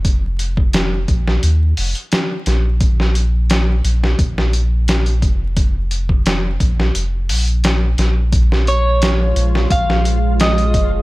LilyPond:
<<
  \new Staff \with { instrumentName = "Clean electric guitar" } { \time 4/4 \key bes \minor \tempo 4 = 87 r1 | r1 | r1 | r8 des''4. f''4 ees''4 | }
  \new Staff \with { instrumentName = "Ambient pad" } { \time 4/4 \key bes \minor r1 | r1 | r1 | <aes aes'>1 | }
  \new Staff \with { instrumentName = "Synth texture" } { \time 4/4 \key bes \minor r1 | r1 | r1 | <f f'>1 | }
  \new Staff \with { instrumentName = "Sub bass" } { \clef bass \time 4/4 \key bes \minor f,,4. bes,,8 ees,8 f,,8 r8 bes,,8~ | bes,,4. bes,,8 bes,,4. f,,8~ | f,,4. bes,,8 f,,8 bes,,4 bes,,8~ | bes,,4. bes,,8 bes,,4. f,,8 | }
  \new DrumStaff \with { instrumentName = "Drums" } \drummode { \time 4/4 <hh bd>8 hh16 bd16 <hh sn>8 <hh bd>16 sn16 hh8 hho16 hh16 <hh sn>8 <hh sn>8 | <hh bd>16 sn16 hh8 <hh sn>8 hh16 sn16 <hh bd>16 sn16 hh8 <hh sn>16 hh16 <hh bd>8 | <hh bd>8 hh16 bd16 <hh sn>8 <hh bd>16 sn16 hh8 hho16 hh16 <hh sn>8 <hh sn>8 | <hh bd>16 sn16 hh8 <hh sn>8 hh16 sn16 <hh bd>16 sn16 hh8 <hh sn>16 hh16 <hh bd>8 | }
>>